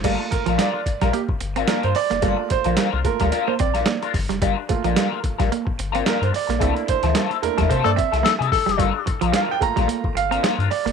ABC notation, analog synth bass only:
X:1
M:4/4
L:1/16
Q:"Swing 16ths" 1/4=110
K:Bblyd
V:1 name="Analog synth bass" clef=bass
G,,, z2 B,,, z2 B,,, B,,, z2 G,,,2 z G,, z F,,, | G,,, z2 B,,, z C,, z D,, z2 B,,,2 z2 G,,, F,,, | G,,, z2 B,,, z2 B,,, B,,, z2 G,,,2 z G,, z B,,, | C,, z2 D,, z2 E,, E,, C, G,, z C,, z C, z F,,, |
G,,, z2 B,,, z2 B,,, B,,, z2 G,,,2 z G,, z F,,, |]